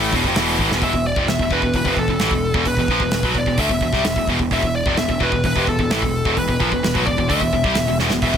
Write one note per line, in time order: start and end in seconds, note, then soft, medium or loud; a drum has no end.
0.00 0.11 A1 medium
0.00 0.13 A2 medium
0.00 0.13 E3 medium
0.00 0.13 A3 loud
0.12 0.23 E1 loud
0.12 0.25 E2 loud
0.12 0.25 B2 loud
0.12 kick loud
0.12 open hi-hat medium
0.24 0.34 F1 medium
0.24 0.36 F2 medium
0.24 0.37 C3 loud
0.24 kick medium
0.35 0.57 E1 loud
0.35 0.59 E2 loud
0.35 0.60 B2 loud
0.35 0.60 E3 loud
0.35 snare loud
0.35 open hi-hat medium
0.59 0.70 A1 medium
0.59 0.71 A2 loud
0.59 0.72 E3 medium
0.59 kick medium
0.70 0.81 E1 medium
0.70 0.82 E2 medium
0.70 0.83 B2 loud
0.70 snare medium
0.81 0.93 E1 medium
0.81 0.94 E2 medium
0.81 0.94 B2 loud
0.81 1.07 E5 loud
0.81 kick medium
0.81 open hi-hat soft
0.93 1.15 E1 medium
0.93 1.13 E2 medium
0.93 1.13 B2 medium
0.93 kick medium
1.07 1.29 D5 medium
1.16 1.28 F1 medium
1.16 1.29 F2 medium
1.16 1.29 C3 medium
1.16 kick loud
1.28 1.39 E1 medium
1.28 1.41 E2 medium
1.28 1.41 B2 medium
1.28 1.51 E5 loud
1.28 snare loud
1.28 open hi-hat soft
1.39 1.50 E1 medium
1.39 1.52 E2 medium
1.39 1.53 B2 medium
1.39 kick medium
1.50 1.62 E1 medium
1.50 1.63 E2 medium
1.50 1.63 B2 medium
1.50 1.74 B4 medium
1.50 kick medium
1.62 1.73 E1 medium
1.62 1.75 E2 medium
1.62 1.75 B2 medium
1.62 kick medium
1.74 1.84 E1 medium
1.74 1.87 E2 medium
1.74 1.87 B2 medium
1.74 1.99 B4 medium
1.74 kick medium
1.74 open hi-hat medium
1.84 1.96 F1 medium
1.84 1.98 F2 loud
1.84 1.98 C3 loud
1.84 kick medium
1.96 2.07 E1 medium
1.96 2.09 E2 medium
1.96 2.67 A4 medium
1.96 kick medium
2.00 2.09 B2 medium
2.08 2.19 E1 medium
2.08 2.21 E2 medium
2.08 2.19 B2 medium
2.08 kick medium
2.19 2.30 A1 medium
2.19 2.31 A2 medium
2.19 2.32 E3 loud
2.19 snare loud
2.19 open hi-hat medium
2.31 2.53 E1 medium
2.31 2.51 E2 medium
2.31 2.51 B2 medium
2.31 kick medium
2.54 2.65 E1 medium
2.54 2.65 E2 medium
2.54 2.66 B2 medium
2.54 kick loud
2.65 2.76 E1 medium
2.65 2.78 E2 medium
2.65 2.77 B2 medium
2.65 3.39 B4 medium
2.65 kick medium
2.65 open hi-hat medium
2.77 2.87 E1 medium
2.77 2.90 E2 medium
2.77 2.90 B2 medium
2.77 kick medium
2.88 3.00 A#1 medium
2.88 3.01 A#2 medium
2.88 3.02 F3 medium
2.88 kick medium
3.00 3.12 E1 medium
3.00 3.13 E2 medium
3.00 3.13 B2 medium
3.00 kick medium
3.11 3.22 E1 medium
3.11 3.25 E2 medium
3.11 3.23 B2 medium
3.11 snare loud
3.11 open hi-hat medium
3.22 3.34 B1 medium
3.22 3.35 B2 medium
3.22 3.36 F#3 loud
3.22 kick loud
3.35 3.46 E1 medium
3.35 3.46 E2 medium
3.35 3.46 B2 medium
3.35 3.60 D5 medium
3.35 kick medium
3.46 3.57 E1 medium
3.46 3.59 E2 medium
3.46 3.57 B2 medium
3.46 kick medium
3.58 3.69 D2 medium
3.58 3.70 D3 medium
3.58 3.70 A3 medium
3.58 4.25 E5 medium
3.58 kick medium
3.58 open hi-hat medium
3.69 3.80 E1 medium
3.69 3.81 E2 medium
3.69 3.81 B2 medium
3.69 kick medium
3.81 3.92 E1 medium
3.81 3.94 E2 medium
3.81 3.93 B2 medium
3.81 kick medium
3.93 4.04 C2 medium
3.93 4.05 C3 medium
3.93 4.06 G3 medium
3.93 kick medium
3.93 snare soft
4.04 4.15 E1 medium
4.04 4.16 E2 medium
4.04 4.17 B2 medium
4.04 snare loud
4.04 open hi-hat medium
4.16 4.26 E1 medium
4.16 4.28 E2 medium
4.16 4.29 B2 medium
4.16 kick medium
4.27 4.39 E1 medium
4.27 4.39 E2 medium
4.27 4.39 B2 medium
4.27 kick medium
4.39 4.51 E1 medium
4.39 4.50 E2 medium
4.39 4.51 B2 medium
4.39 kick medium
4.51 4.62 E1 medium
4.51 4.62 E2 loud
4.51 4.63 B2 loud
4.51 4.74 E5 loud
4.51 kick medium
4.51 open hi-hat medium
4.63 4.85 E1 medium
4.63 4.82 E2 medium
4.63 4.82 B2 medium
4.63 kick medium
4.76 4.98 D5 medium
4.86 4.97 F1 medium
4.86 4.98 F2 medium
4.86 4.98 C3 loud
4.86 kick loud
4.97 5.08 E1 medium
4.97 5.08 E2 medium
4.97 5.08 B2 medium
4.97 5.22 E5 loud
4.97 snare loud
4.97 open hi-hat medium
5.09 5.20 E1 medium
5.09 5.19 E2 medium
5.09 5.20 B2 medium
5.09 kick medium
5.20 5.32 E1 medium
5.20 5.32 E2 medium
5.20 5.32 B2 medium
5.20 5.45 B4 medium
5.20 kick medium
5.32 5.43 E1 medium
5.32 5.44 E2 medium
5.32 5.44 B2 medium
5.32 kick medium
5.43 5.55 E1 medium
5.43 5.55 E2 medium
5.43 5.56 B2 medium
5.43 5.68 B4 medium
5.43 kick medium
5.43 open hi-hat medium
5.56 5.66 F1 medium
5.56 5.67 F2 medium
5.56 5.68 C3 loud
5.56 kick medium
5.67 5.78 E1 medium
5.67 5.78 E2 medium
5.67 5.79 B2 medium
5.67 6.38 A4 medium
5.67 kick medium
5.78 5.90 E1 medium
5.78 5.91 E2 medium
5.78 5.90 B2 medium
5.78 kick medium
5.90 6.01 A1 medium
5.90 6.02 A2 loud
5.90 6.02 E3 loud
5.90 snare loud
5.90 open hi-hat medium
6.02 6.24 E1 medium
6.02 6.21 E2 medium
6.02 6.21 B2 medium
6.02 kick medium
6.25 6.36 E1 medium
6.25 6.36 E2 medium
6.25 6.36 B2 medium
6.25 kick loud
6.37 6.47 E1 medium
6.37 6.46 E2 medium
6.37 6.47 B2 medium
6.37 7.03 B4 medium
6.37 kick medium
6.37 open hi-hat medium
6.47 6.59 E1 medium
6.47 6.60 E2 medium
6.47 6.59 B2 medium
6.47 kick medium
6.60 6.71 A#1 loud
6.60 6.71 A#2 medium
6.60 6.72 F3 loud
6.60 kick medium
6.71 6.82 E1 medium
6.71 6.82 E2 medium
6.71 6.82 B2 medium
6.71 kick medium
6.83 6.95 E1 medium
6.83 6.95 E2 medium
6.83 6.93 B2 medium
6.83 snare loud
6.83 open hi-hat medium
6.94 7.05 B1 medium
6.94 7.05 B2 medium
6.94 7.06 F#3 loud
6.94 kick loud
7.06 7.17 E1 medium
7.06 7.17 E2 medium
7.06 7.17 B2 medium
7.06 7.29 D5 medium
7.06 kick medium
7.18 7.29 E1 medium
7.18 7.30 E2 medium
7.18 7.29 B2 medium
7.18 kick medium
7.29 7.40 D2 medium
7.29 7.41 D3 loud
7.29 7.41 A3 medium
7.29 7.95 E5 medium
7.29 kick loud
7.29 open hi-hat medium
7.41 7.52 E1 medium
7.41 7.52 E2 medium
7.41 7.52 B2 medium
7.41 kick medium
7.53 7.63 E1 medium
7.53 7.65 E2 medium
7.53 7.63 B2 medium
7.53 kick medium
7.64 7.75 C2 medium
7.64 7.75 C3 medium
7.64 7.76 G3 medium
7.64 kick medium
7.75 7.87 E1 medium
7.75 7.86 E2 medium
7.75 7.87 B2 medium
7.75 snare loud
7.75 open hi-hat medium
7.88 7.99 E1 medium
7.88 7.98 E2 medium
7.88 7.99 B2 medium
7.99 8.11 E1 medium
7.99 8.10 E2 medium
7.99 8.10 B2 medium
7.99 snare medium
8.10 8.21 E1 medium
8.10 8.21 E2 medium
8.10 8.23 B2 medium
8.10 snare medium
8.22 8.33 E1 medium
8.22 8.33 E2 medium
8.22 8.33 B2 loud
8.22 8.37 E5 loud
8.22 kick medium
8.22 open hi-hat medium
8.34 8.37 E1 medium
8.34 8.37 E2 medium
8.34 8.37 B2 medium
8.34 kick medium